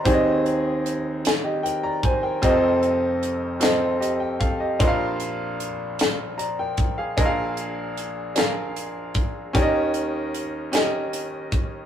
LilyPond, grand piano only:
<<
  \new Staff \with { instrumentName = "Grand piano" } { \time 6/8 \key bes \mixolydian \tempo 4. = 51 << { bes''16 r4. <g' ees''>16 <bes' g''>16 <d'' bes''>16 <c'' aes''>16 <bes' g''>16~ | <bes' g''>16 r4. r16 <g' ees''>16 g''16 <a' f''>16 <g' ees''>16~ | <g' ees''>16 r4. r16 <d'' bes''>16 <bes' g''>8 <aes' f''>16~ | <aes' f''>16 r2 r8. |
r2. | } \\ { <c' g' aes' d'' ees''>4 r2 | <c' f' g' a' ees''>4 r8 <c' f' a' ees''>4 r8 | <d' f' bes' ees'' f''>4 r2 | <d' aes' bes' ees'' f''>4 r8 <d' aes' bes' f''>4 r8 |
<des' g' bes' d'' ees''>4 r8 <des' g' bes' ees''>4 r8 | } >> }
  \new Staff \with { instrumentName = "Grand piano" } { \clef bass \time 6/8 \key bes \mixolydian <ees, ees>2. | <f,, f,>2. | <bes,, bes,>2. | <bes,, bes,>2. |
<ees, ees>2. | }
>>